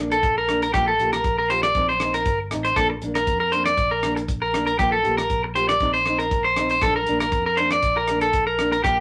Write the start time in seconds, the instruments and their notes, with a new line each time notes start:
Already playing: fingered electric bass A#1, nylon-string guitar A4
0.00 nylon-string guitar A#3 D4
0.12 clean electric guitar A4, closed hi-hat
0.23 kick, closed hi-hat
0.38 clean electric guitar A#4
0.48 nylon-string guitar A#3 D4 A4, cross-stick, closed hi-hat
0.62 clean electric guitar A#4, closed hi-hat
0.74 fingered electric bass A#1, nylon-string guitar F3 A#3 F4, clean electric guitar G4, muted nylon-string guitar stroke, kick, cross-stick, closed hi-hat
0.88 clean electric guitar A4
0.99 fingered electric bass A#1, nylon-string guitar A#3 F4 G4, closed hi-hat
1.13 clean electric guitar A#4, cross-stick, closed hi-hat
1.24 fingered electric bass A#1, kick, closed hi-hat
1.38 clean electric guitar A#4
1.49 nylon-string guitar A#3 F4 G4, clean electric guitar C5, closed hi-hat
1.63 clean electric guitar D5, cross-stick, closed hi-hat
1.75 fingered electric bass A#1, nylon-string guitar F3 C4 D#4 A4, kick, closed hi-hat
1.89 clean electric guitar C5
2.00 nylon-string guitar D#4 A4, cross-stick, closed hi-hat
2.05 nylon-string guitar C4
2.14 clean electric guitar A#4, closed hi-hat
2.25 fingered electric bass G1, kick, closed hi-hat
2.51 fingered electric bass A1, nylon-string guitar C4 D#4 A4, cross-stick, closed hi-hat
2.65 clean electric guitar C5, closed hi-hat
2.76 fingered electric bass A#1, nylon-string guitar F3 A#3 D4 A4, clean electric guitar A4, kick, cross-stick, closed hi-hat
2.90 muted clean electric guitar stroke
3.01 fingered electric bass A#1, nylon-string guitar A#3 D4 A4, closed hi-hat
3.15 clean electric guitar A#4, cross-stick, closed hi-hat
3.27 fingered electric bass F2, kick, closed hi-hat
3.40 clean electric guitar A#4
3.51 nylon-string guitar A#3 D4 A4, clean electric guitar C5, closed hi-hat
3.66 clean electric guitar D5, cross-stick, closed hi-hat
3.77 fingered electric bass A#1, kick, closed hi-hat
3.91 clean electric guitar A#4
4.03 nylon-string guitar A#3 D4 A4, cross-stick, closed hi-hat
4.16 muted clean electric guitar stroke, closed hi-hat
4.28 kick, closed hi-hat
4.42 clean electric guitar A#4
4.53 nylon-string guitar A#3 D4 A4, cross-stick, closed hi-hat
4.66 clean electric guitar A#4, closed hi-hat
4.78 fingered electric bass A#1, nylon-string guitar F3 A#3 F4, clean electric guitar G4, muted nylon-string guitar stroke, kick, cross-stick, closed hi-hat
4.92 clean electric guitar A4
5.03 fingered electric bass A#1, nylon-string guitar A#3 F4 G4, closed hi-hat
5.17 clean electric guitar A#4, cross-stick, closed hi-hat
5.30 fingered electric bass A#1, kick, closed hi-hat
5.44 muted clean electric guitar stroke
5.55 nylon-string guitar A#3 F4 G4, clean electric guitar C5, closed hi-hat
5.69 clean electric guitar D5, cross-stick, closed hi-hat
5.80 fingered electric bass A#1, nylon-string guitar C4 D#4 A4, muted nylon-string guitar stroke, kick, closed hi-hat
5.94 clean electric guitar C5
6.06 nylon-string guitar C4 D#4, cross-stick, closed hi-hat
6.19 clean electric guitar A#4, closed hi-hat
6.31 kick, closed hi-hat
6.44 clean electric guitar C5
6.56 nylon-string guitar D#4 A4, cross-stick, closed hi-hat
6.60 nylon-string guitar C4
6.69 clean electric guitar C5, closed hi-hat
6.81 fingered electric bass A#1, nylon-string guitar F3 D4 A4, clean electric guitar A4, muted nylon-string guitar stroke, kick, cross-stick, closed hi-hat
6.96 clean electric guitar A#4
7.06 fingered electric bass A#1, nylon-string guitar A#3 D4 A4, closed hi-hat
7.20 clean electric guitar A#4, cross-stick, closed hi-hat
7.32 fingered electric bass F2, kick, closed hi-hat
7.46 clean electric guitar A#4
7.57 nylon-string guitar A#3 D4 A4, clean electric guitar C5, closed hi-hat
7.71 clean electric guitar D5, cross-stick, closed hi-hat
7.82 fingered electric bass A#1, kick, closed hi-hat
7.97 clean electric guitar A#4
8.07 nylon-string guitar D4 A4, cross-stick, closed hi-hat
8.13 nylon-string guitar A#3
8.21 clean electric guitar A4, closed hi-hat
8.33 kick, closed hi-hat
8.47 clean electric guitar A#4
8.58 nylon-string guitar A#3 D4 A4, cross-stick, closed hi-hat
8.72 clean electric guitar A#4, closed hi-hat
8.83 fingered electric bass A#1, nylon-string guitar F3 A#3 F4, clean electric guitar G4, muted nylon-string guitar stroke, kick, cross-stick, closed hi-hat